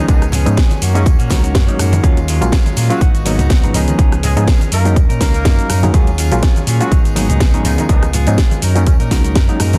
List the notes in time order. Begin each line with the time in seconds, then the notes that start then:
0.08 C#2 D#3 F3 G#3 B3 C#4 D#4 G#4, kick, closed hi-hat, tambourine, shaker
0.22 cross-stick, closed hi-hat, tambourine, shaker
0.32 F3 B3 C#4 G#4, open hi-hat, tambourine, low conga, shaker
0.45 G#2 F3 G#3 B3 C#4 D#4, closed hi-hat, tambourine, shaker
0.57 F3 B3 C#4 G#4, kick, snare, closed hi-hat, tambourine, shaker
0.70 closed hi-hat, tambourine, high conga, shaker
0.81 F#2 D#3 A#3 C#4 F#4, open hi-hat, tambourine, shaker
0.94 C#3 F#3 G#3 A#3 C#4 D#4 F#4, closed hi-hat, tambourine, shaker
1.06 D#2 C#3 C#4, kick, closed hi-hat, tambourine, shaker
1.19 A#2 A#3 C#4 F#4, closed hi-hat, tambourine, shaker
1.30 C#2 D#3 F#3 G#3 A#3 C#4 D#4 F#4, kick, snare, open hi-hat, tambourine, high conga, shaker
1.43 A#3 C#4 F#4, closed hi-hat, tambourine, shaker
1.55 F#2 D#3 A#3 C#4 F#4, kick, snare, closed hi-hat, tambourine, shaker
1.68 F#3 G#3 A#3 C#4 D#4, closed hi-hat, shaker
1.79 F#2 D#3 A#3 C#4 F#4, cross-stick, open hi-hat, tambourine, low conga, shaker
1.92 closed hi-hat, tambourine, high conga, low conga, shaker
2.03 D#2 F#3 G#3 A#3 C#4 F4, kick, closed hi-hat, tambourine, shaker
2.17 closed hi-hat, tambourine
2.28 F#3 G#3 C#4 F4, open hi-hat, tambourine, shaker
2.41 A#1 F#3 G#3 A#3 C#4 F4, closed hi-hat, tambourine, shaker
2.52 F#3 G#3 C#4 F4, kick, snare, closed hi-hat, tambourine, shaker
2.66 closed hi-hat, tambourine, high conga, shaker
2.76 A#2 F#3 G#3 C#4 F4, open hi-hat, tambourine, shaker
2.90 F#3 G#3 A#3 C#4 F4 F#4, closed hi-hat, tambourine, shaker
3.01 G#1 F#3 B3 D#4 F#4, kick, closed hi-hat, tambourine, shaker
3.14 B3 D#4 F#4, closed hi-hat, tambourine, shaker
3.25 F#3 G#3 A#3 B3 D#4 F#4, open hi-hat, tambourine, high conga, shaker
3.39 C#2 B3 D#4 F#4, closed hi-hat, tambourine, low conga, shaker
3.50 F#3 B3 D#4 F#4, kick, snare, closed hi-hat, shaker
3.63 G#1 F3 G#3 B3 C#4 D#4, closed hi-hat, shaker
3.74 C#2 D#3 F3 B3 C#4 D#4 G#4, open hi-hat, tambourine, low conga, shaker
3.88 D#3 D#4, closed hi-hat, tambourine, high conga, shaker
3.98 C#2 F3 G#3 B3 C#4 D#4 G#4, kick, closed hi-hat, tambourine, shaker
4.12 cross-stick, closed hi-hat, tambourine, shaker
4.23 F3 G#3 B3 C#4 G#4, open hi-hat, tambourine, low conga, shaker
4.36 G#2 F3 G#3 B3 C#4 D#4 G#4, closed hi-hat, tambourine, shaker
4.47 B3 C#4 G#4, kick, snare, closed hi-hat, tambourine, shaker
4.60 closed hi-hat, tambourine, high conga, shaker
4.72 F#2 F#3 A#3 C#4 D#4 A#4, open hi-hat, tambourine, shaker
4.85 F#3 G#3 A#3 C#4 D#4 A#4, closed hi-hat, tambourine, shaker
4.96 D#2, kick, closed hi-hat, tambourine, shaker
5.09 A#2 C#4 D#4 A#4, closed hi-hat, tambourine, shaker
5.20 C#2 F#3 A#3 C#4 D#4 A#4, kick, snare, open hi-hat, tambourine, high conga, shaker
5.34 C#4 D#4 A#4, closed hi-hat, tambourine, shaker
5.45 F#2 F#3 G#3 A#3 C#4 D#4 A#4, kick, snare, closed hi-hat, tambourine, shaker
5.59 closed hi-hat, shaker
5.69 F#2 F#3 C#4 D#4 A#4, cross-stick, open hi-hat, tambourine, low conga, shaker
5.82 F#3 G#3 A#3 C#4 D#4, closed hi-hat, tambourine, high conga, low conga, shaker
5.94 D#2 F#3 G#3 A#3 C#4 F4 G#4, kick, closed hi-hat, tambourine, shaker
6.07 closed hi-hat, tambourine
6.18 F#3 C#4 F4 G#4, open hi-hat, tambourine, shaker
6.31 A#1 F#3 G#3 A#3 C#4 F4, closed hi-hat, tambourine, shaker
6.43 F#3 C#4 F4 G#4, kick, snare, closed hi-hat, tambourine, shaker
6.56 closed hi-hat, tambourine, high conga, shaker
6.67 A#2 F#3 C#4 F4 G#4, open hi-hat, tambourine, shaker
6.80 F#3 G#3 A#3 C#4 F4 F#4 G#4, closed hi-hat, tambourine, shaker
6.91 G#1 F#3 B3 D#4 G#4, kick, closed hi-hat, tambourine, shaker
7.04 B3 D#4 G#4, closed hi-hat, tambourine, shaker
7.15 F#3 G#3 A#3 B3 D#4 G#4, open hi-hat, tambourine, high conga, shaker
7.29 C#2 B3 D#4 G#4, closed hi-hat, tambourine, low conga, shaker
7.40 F#3 D#4 G#4, kick, snare, closed hi-hat, tambourine, shaker
7.53 G#1 F3 G#3 B3 C#4 D#4, closed hi-hat, shaker
7.64 C#2 D#3 G#3 B3 D#4 F4 G#4, open hi-hat, tambourine, low conga, shaker
7.78 D#3 D#4, closed hi-hat, tambourine, high conga, shaker
7.89 C#2 D#3 F3 G#3 B3 C#4 D#4 F4 G#4, kick, closed hi-hat, shaker
8.03 cross-stick, closed hi-hat, tambourine, shaker
8.13 G#3 B3 F4 G#4, open hi-hat, tambourine, low conga, shaker
8.27 G#2 F3 G#3 B3 C#4 D#4, closed hi-hat, tambourine, shaker
8.38 G#3 B3 F4 G#4, kick, snare, closed hi-hat, tambourine, shaker
8.51 closed hi-hat, tambourine, high conga, shaker
8.62 F#2 F#3 C#4 D#4 A#4, open hi-hat, tambourine, shaker
8.75 C#3 F#3 G#3 A#3 C#4 D#4 A#4, closed hi-hat, tambourine, shaker
8.86 D#2 C#3 C#4, kick, closed hi-hat, tambourine, shaker
9.00 A#2 C#4 D#4 A#4, closed hi-hat, tambourine, shaker
9.11 C#2 F#3 G#3 A#3 C#4 D#4 A#4, kick, snare, open hi-hat, tambourine, high conga, shaker
9.24 C#4 D#4 A#4, closed hi-hat, tambourine, shaker
9.35 F#2 F#3 C#4 D#4 A#4, kick, snare, closed hi-hat, tambourine, shaker
9.48 F#3 G#3 A#3 C#4 D#4, closed hi-hat, shaker
9.60 F#2 F#3 C#4 D#4 A#4, cross-stick, open hi-hat, tambourine, low conga, shaker
9.73 closed hi-hat, tambourine, high conga, low conga, shaker